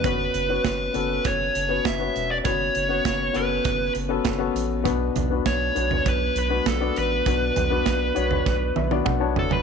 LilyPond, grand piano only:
\new Staff \with { instrumentName = "Grand piano" } { \time 4/4 \key fis \phrygian \tempo 4 = 100 << { r1 | r1 | b,4. r2 r8 | b,4. r4 e''8 fis''16 a''8. | } \\ { <b cis' fis' b'>8 r16 <b cis' fis' b'>8 r16 <b cis' fis' a'>4 r16 <b cis' fis' b'>16 r16 <b cis' fis' b'>8 r16 | <b cis' fis' b'>8 r16 <b cis' fis' b'>8 r16 <b cis' fis' a' b'>4 r16 <b cis' fis' a'>16 r16 <b cis' fis' a'>8 r16 | <b d' fis' b'>8 r16 <b d' fis' b'>8 r16 <b d' fis' b'>4 r16 <b d' fis' b'>16 r16 <b d' fis' d''>8 r16 | <b d' fis' b'>8 r16 <b d' fis' b'>8 r16 <b d' fis' cis''>4 r16 <b d' fis' d''>16 r16 <b d' fis' cis''>8 r16 | } >> }